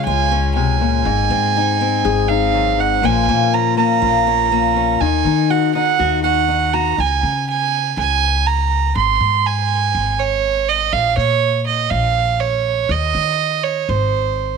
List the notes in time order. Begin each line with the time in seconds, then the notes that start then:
Already playing: C#3 G#3 C#4
0.06 C#2 F4 G#5
0.32 C#4
0.55 C3 G#5
0.81 A#2
1.05 G#1 G#2
1.30 G#2 C4
1.57 D#4
1.81 C4
2.05 G#1 G#4
2.29 D#4 F5
2.54 F#2
2.78 G#2 F#5
3.02 A#1 A#2 F3 A#3 C#4 F4 G#5
3.28 A#2 A#3
3.54 C#4 A#5
3.77 A#3 A#5
4.02 A#1 F4
4.27 C#4
4.52 A#3
4.76 C#4
5.01 D#2 D#3 G#5
5.25 D#3 D#4
5.50 F#4 F#5
5.75 D#4 F#5
5.99 D#2 F#4
6.24 F#4 F#5
6.48 D#4
6.74 F#4 A#5
6.98 C#2 G#5
7.23 C#3
7.50 G#5
7.97 C#2 G#5
8.46 A#5
8.96 G#1 C6
9.21 G#2
9.46 G#5
9.95 G#1
10.19 C#5
10.69 D#5
10.92 A#1 F5
11.17 A#2 C#5
11.67 D#5
11.90 A#1 F5
12.40 C#5
12.89 D#2 D#5
13.15 D#3
13.64 C#5
13.89 G#1 C5